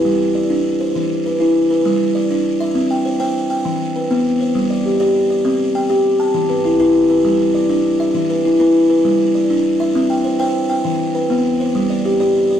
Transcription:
\new Staff \with { instrumentName = "Kalimba" } { \time 12/8 \key g \major \tempo 4. = 133 << { b'8 r8 d''4. c''4 r8 b'4. b'8~ | b'8 r8 d''4. e''4 g''8 c''8 g''4 g''8~ | g''8 r8 b'4. c''4 d''8 g'8 d''4 d''8~ | d''8 r8 g''4. a''4 b'8 e'8 b'4 b'8~ |
b'8 r8 d''4. e''4 b'8 e'8 b'4 b'8~ | b'8 r8 d''4. e''4 g''8 c''8 g''4 g''8~ | g''8 r8 b'4. c''4 d''8 g'8 d''4 d''8 | } \\ { g4 r8 d'4 r8 e4 r8 e'4 r8 | g4 r8 d'4 r8 c'4 r8 c''4 r8 | e4 r8 b4 r8 g4 r8 g'4 r8 | c'4 r8 g'4 r8 e4 r8 e'4 r8 |
g4 r8 d'4 r8 e4 r8 e'4 r8 | g4 r8 d'4 r8 c'4 r8 c''4 r8 | e4 r8 b4 r8 g4 r8 g'4 r8 | } >> }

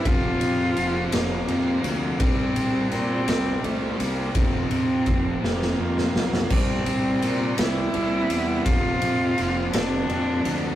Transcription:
<<
  \new Staff \with { instrumentName = "Cello" } { \time 6/8 \key f \major \tempo 4. = 56 f'4. bes4. | c'4 c'4 a8 bes8 | c'4. bes4. | c'4. e'4. |
f'4. d'4. | }
  \new Staff \with { instrumentName = "Distorted electric guitar" } { \clef bass \time 6/8 \key f \major <f, c f>2 <f, c f>4 | <c g c'>2 <c g c'>4 | <f, c f>2 <f, c f>4 | <c g c'>2 <c g c'>4 |
<f, c f>2 <f, c f>4 | }
  \new Staff \with { instrumentName = "Overdriven electric guitar" } { \clef bass \time 6/8 \key f \major <f, c f>4. <f, c f>4. | <c g c'>4. <c g c'>4. | <f, c f>4. <f, c f>4. | <c g c'>4. <c g c'>4. |
<f, c f>4. <f, c f>4. | }
  \new Staff \with { instrumentName = "Fingered electric bass" } { \clef bass \time 6/8 \key f \major f,,8 f,8 f,,8 f,,8 f,8 d,8 | c,8 c,8 bes,8 c,8 c,8 c,8 | f,,8 f,8 f,,8 f,,8 f,8 b,,8 | c,8 c,8 bes,8 c,8 c,8 e,8 |
f,,8 f,8 f,,8 f,,8 f,8 d,8 | }
  \new DrumStaff \with { instrumentName = "Drums" } \drummode { \time 6/8 <bd cymr>8 cymr8 cymr8 <cymr sn>8 cymr8 cymr8 | <bd cymr>8 cymr8 cymr8 <cymr sn>8 cymr8 cymr8 | <bd cymr>8 cymr8 <bd cymr>8 sn16 sn8 sn16 sn16 sn16 | <cymc bd>8 cymr8 cymr8 <cymr sn>8 cymr8 cymr8 |
<bd cymr>8 cymr8 cymr8 <cymr sn>8 cymr8 cymr8 | }
>>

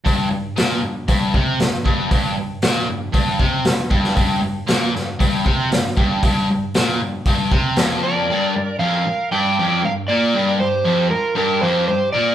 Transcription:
<<
  \new Staff \with { instrumentName = "Electric slide guitar" } { \time 4/4 \key g \minor \tempo 4 = 117 r1 | r1 | r1 | r2. r8 d''8~ |
d''4 f''4 g''4 f''8 d''8~ | d''8 c''4 bes'8 bes'8 c''8 c''8 d''8 | }
  \new Staff \with { instrumentName = "Lead electric guitar" } { \time 4/4 \key g \minor r1 | r1 | r1 | r2. r8 bes'8~ |
bes'4 bes'4 d''4 bes'8 bes'8~ | bes'8 g'4 f'8 g'8 g'8 g'8 bes'8 | }
  \new Staff \with { instrumentName = "Overdriven electric guitar" } { \clef bass \time 4/4 \key g \minor g,8 g,8 bes,8 g,8 g,8 c8 g,8 g,8 | g,8 g,8 bes,8 g,8 g,8 c8 g,8 g,8 | g,8 g,8 bes,8 g,8 g,8 c8 g,8 g,8 | g,8 g,8 bes,8 g,8 g,8 c8 f,4 |
g,8 g,8 f,8 r8 g,8 f,8 g,8 bes,8 | g,8 g,8 f,8 r8 g,8 f,8 g,8 bes,8 | }
  \new DrumStaff \with { instrumentName = "Drums" } \drummode { \time 4/4 <hho bd>4 <hho sn>4 <hho bd>8 bd8 <hho sn>8 bd8 | <hho bd>4 <hho sn>4 <hho bd>8 bd8 <hho sn>8 bd16 sn16 | <hho bd>4 <hho sn>8 sn8 <hho bd>8 bd8 <hho sn>8 bd8 | <hho bd>4 <hho sn>4 <hho bd>8 bd8 <hho sn>4 |
r4 r4 r4 r4 | r4 r4 r4 r4 | }
>>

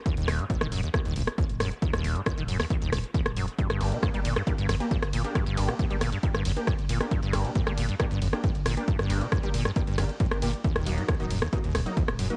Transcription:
<<
  \new Staff \with { instrumentName = "Synth stab" } { \time 4/4 \key g \minor \tempo 4 = 136 r1 | r1 | r8 <bes d' g'>8. <bes d' g'>16 r8 <bes d' g'>16 r8 <bes d' g'>16 r8. <bes d' g'>16 | r8 <bes d' g'>8. <bes d' g'>16 r8 <bes d' g'>16 r8 <bes d' g'>16 r8. <bes d' g'>16 |
r8 <bes d' g'>8. <bes d' g'>16 r8 <bes d' g'>16 r8 <bes d' g'>16 r8. <bes d' g'>16 | r8 <bes d' g'>8. <bes d' g'>16 r8 <bes d' g'>16 r16 <bes d' g'>16 r8 <bes d' g'>16 <bes d' g'>16 r16 | r8 <ges bes ees'>8. <ges bes ees'>16 r8 <ges bes ees'>16 r8 <ges bes ees'>16 r8. <ges bes ees'>16 | }
  \new Staff \with { instrumentName = "Acid bass" } { \clef bass \time 4/4 \key g \minor ees,16 ees,8 aes,16 ees,16 ees16 ges,16 ees,16 ees,16 ees,16 cis,16 r16 ees,16 r16 ges,16 r16 | ees,16 ees,8 aes,16 ees,16 ees16 ges,16 ees,16 ees,16 ees,16 cis,16 r16 ees,16 r16 ges,16 r16 | g,16 g,8 c16 g,16 g16 bes,16 g,16 g,16 g,16 fis,16 r16 g,16 r16 bes,16 r16 | g,16 g,8 c16 g,16 g16 bes,16 g,16 g,16 g,16 fis,16 r16 g,16 r16 bes,16 r16 |
g,16 g,8 c16 g,16 g16 bes,16 g,16 g,16 g,16 fis,16 r16 g,16 r16 bes,16 r16 | g,16 g,8 c16 g,16 g16 bes,16 g,16 g,16 g,16 fis,16 r16 g,16 r16 bes,16 r16 | ees,16 ees,8 aes,16 ees,16 ees16 ges,16 ees,16 ees,16 ees,16 cis,16 r16 ees,16 r16 ges,16 r16 | }
  \new Staff \with { instrumentName = "Sub bass" } { \clef bass \time 4/4 \key g \minor r16 ees,,16 ees,,16 r8 ees,,16 ees,,16 r8 ees,,16 ees,,16 r8 ees,,16 ees,,16 r16 | r16 ees,,16 ees,,16 r8 ees,,16 ees,,16 r8 ees,,16 ees,,16 r8 ees,,16 ees,,16 r16 | r16 g,,16 g,,16 r8 g,,16 g,,16 r8 g,,16 g,,16 r8 g,,16 g,,16 r16 | r16 g,,16 g,,16 r8 g,,16 g,,16 r8 g,,16 g,,16 r8 g,,16 g,,16 r16 |
r16 g,,16 g,,16 r8 g,,16 g,,16 r8 g,,16 g,,16 r8 g,,16 g,,16 r16 | r16 g,,16 g,,16 r8 g,,16 g,,16 r8 g,,16 g,,16 r8 g,,16 g,,16 r16 | r16 ees,,16 ees,,16 r8 ees,,16 ees,,16 r8 ees,,16 ees,,16 r8 ees,,16 ees,,16 r16 | }
  \new DrumStaff \with { instrumentName = "Drums" } \drummode { \time 4/4 <hh bd>16 hh16 <hho ss>16 hh16 <hh bd>16 <hh ss>16 hho16 hh16 <hh bd ss>16 hh16 hho16 <hh ss>16 <hh bd>16 hh16 <hho ss>16 hh16 | <hh bd>16 <hh ss>16 hho16 hh16 <hh bd ss>16 hh16 hho16 <hho ss>16 <hh bd>16 hh16 <hho ss>16 hh16 <hh bd>16 <hh ss>16 hho16 hh16 | <hh bd>16 <hh ss>16 <hho cymr>16 hh16 <hh bd ss>16 hh16 <hho cymr>16 ss16 <hh bd>16 hh16 <hho cymr ss>16 hh16 <hh bd>16 <hh ss>16 <hho cymr>16 hh16 | <hh bd ss>16 hh16 <hho cymr>16 <hh ss>16 <hh bd>16 hh16 <hho cymr ss>16 hh16 <hh bd>16 <hh ss>16 <hho cymr>16 hh16 <hh bd ss>16 hh16 <hho cymr>16 <hh ss>16 |
<hh bd>16 hh16 <hho cymr ss>16 hh16 <hh bd>16 <hh ss>16 <hho cymr>16 hh16 <hh bd ss>16 hh16 <hho cymr>16 <hh ss>16 <hh bd>16 hh16 <hho cymr ss>16 hh16 | <hh bd>16 <hh ss>16 <hho cymr>16 hh16 <hh bd ss>16 hh16 <hho cymr>16 <hh ss>16 <hh bd>16 hh16 <hho cymr ss>16 hh16 <hh bd>16 <hh ss>16 <hho cymr>16 hh16 | <hh bd>16 <hh ss>16 <hho cymr>16 hh16 <hh bd ss>16 hh16 <hho cymr>16 <hh ss>16 <hh bd>16 hh16 <hho cymr ss>16 hh16 <hh bd>16 <hh ss>16 <hho cymr>16 hh16 | }
>>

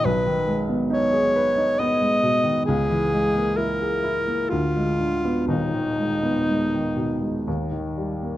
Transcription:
<<
  \new Staff \with { instrumentName = "Alto saxophone" } { \time 3/4 \key gis \minor \tempo 4 = 65 b'8 r8 cis''4 dis''4 | gis'4 ais'4 f'4 | dis'2~ dis'8 r8 | }
  \new Staff \with { instrumentName = "Grand piano" } { \clef bass \time 3/4 \key gis \minor b,,16 dis16 gis16 b16 dis'16 gis'16 b'16 dis'16 b16 gis16 b,16 dis16 | cis,16 e16 gis16 ais16 e'16 gis'16 e'16 ais16 d,16 aes16 d16 b16 | <dis,, dis,>16 dis16 gis16 b16 gis16 dis16 b,16 gis16 dis,16 dis16 g16 ais16 | }
>>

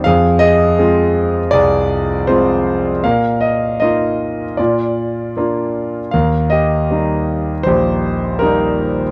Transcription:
<<
  \new Staff \with { instrumentName = "Grand piano" } { \time 4/4 \key ees \major \tempo 4 = 79 << { f''8 ees''4. d''4 c''8. r16 | f''8 ees''8 ees''4 d''4 r4 | f''8 ees''4. c''4 bes'4 | } \\ { aes'8 aes'4. aes'2 | bes'2 f'2 | bes'8 g'4. g'2 | } >> }
  \new Staff \with { instrumentName = "Grand piano" } { \time 4/4 \key ees \major f,4 <aes c' f'>4 c,4 <aes c' f'>4 | bes,4 <bes ees' f'>4 bes,4 <bes d' f'>4 | ees,4 <g bes ees'>4 bes,,4 <g bes ees'>4 | }
>>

